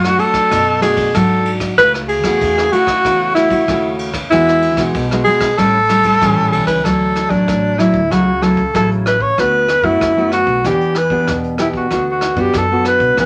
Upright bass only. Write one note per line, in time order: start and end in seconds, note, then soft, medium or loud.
0.00 0.15 F#2 medium
0.52 1.05 F#2 medium
1.15 1.69 G#2 loud
1.78 2.22 C#2 medium
2.22 2.37 E2 medium
2.41 2.68 E2 medium
3.05 3.59 E2 medium
3.69 4.22 D#2 medium
4.32 4.76 E2 loud
4.76 4.90 B1 medium
4.95 5.22 B1 medium
5.58 6.12 A1 medium
6.22 6.35 A1 loud
6.38 6.52 A1 medium
6.53 6.65 B1 medium
6.65 6.81 C#2 medium
6.85 7.25 D2 medium
7.29 7.44 A1 medium
7.49 7.89 A1 medium
7.92 8.12 D2 medium
8.12 8.65 C#2 medium
8.75 9.29 A1 medium
9.38 9.79 D2 medium
9.82 9.97 F#2 medium
10.01 10.42 F#2 medium
10.45 10.66 B1 medium
10.65 11.19 E2 medium
11.28 11.82 E2 medium
11.91 12.32 D2 medium
12.35 12.50 F#2 medium
12.54 12.95 F#2 medium
12.99 13.18 B1 medium
13.18 13.26 E2 medium